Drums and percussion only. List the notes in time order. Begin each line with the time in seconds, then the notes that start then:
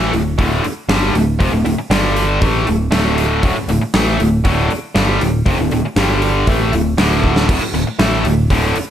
0.13 open hi-hat
0.39 kick, open hi-hat
0.64 open hi-hat
0.89 snare, open hi-hat
1.15 open hi-hat
1.40 kick, open hi-hat
1.66 open hi-hat
1.91 snare, open hi-hat
2.16 open hi-hat
2.42 kick, open hi-hat
2.67 open hi-hat
2.92 snare, open hi-hat
3.18 open hi-hat
3.43 kick, open hi-hat
3.69 open hi-hat
3.94 snare, open hi-hat
4.20 open hi-hat
4.45 kick, open hi-hat
4.71 open hi-hat
4.96 snare, open hi-hat
5.21 open hi-hat
5.46 kick, open hi-hat
5.71 open hi-hat
5.96 snare, open hi-hat
6.22 open hi-hat
6.47 kick, open hi-hat
6.73 open hi-hat
6.98 snare, open hi-hat
7.24 kick
7.36 snare
7.49 kick, open hi-hat, crash
7.75 open hi-hat
7.99 snare, open hi-hat
8.25 open hi-hat
8.50 kick, open hi-hat
8.76 open hi-hat